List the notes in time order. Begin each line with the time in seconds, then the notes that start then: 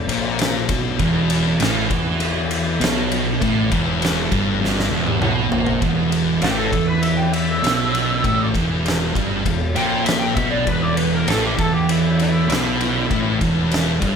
0.08 A#1 A#2, ride
0.39 snare, ride
0.69 B1 B2, kick, ride
0.99 E1 E2, kick, ride
1.30 ride
1.59 A1 A2, snare, ride
1.90 E2 E3, kick, ride
2.20 ride
2.51 ride
2.80 B1 B2, ride
2.84 snare
3.12 ride
3.41 A1 A2, kick, ride
3.70 E1 E2, kick, ride
4.02 snare, ride
4.31 G1 G2, kick, ride
4.61 G1 G2, snare
4.79 snare
4.91 E1 E2
5.07 high tom
5.21 B1 B2, mid tom
5.52 A#1 A#2, floor tom
5.66 floor tom
5.82 E1 E2, kick, ride
6.12 ride
6.41 A1 A2 G4, snare, ride
6.56 A4
6.72 E2 E3, kick, ride
6.87 B4
7.02 E5, ride
7.17 G5
7.32 E5, ride
7.62 B1 B2, ride
7.67 snare
7.95 ride
8.24 A1 A2, kick, ride
8.54 E1 E2, kick, ride
8.86 snare, ride
9.15 G1 G2, kick, ride
9.45 E1 E2, kick, ride
9.74 A#1 A#2 G5, ride
10.05 E5, snare, ride
10.20 G5
10.35 B1 B2 E5, kick, ride
10.50 D5
10.66 E1 E2 B4, kick, ride
10.82 D5
10.97 B4, ride
11.15 A#4
11.27 A1 A2 A4, snare, ride
11.44 G4
11.57 E2 E3 A4, kick, ride
11.73 G4
11.89 E4, ride
12.19 E4, ride
12.49 B1 B2, snare, ride
12.81 ride
13.10 A1 A2, kick, ride
13.40 E1 E2, kick, ride
13.71 snare, ride
14.01 G1 G2, kick, ride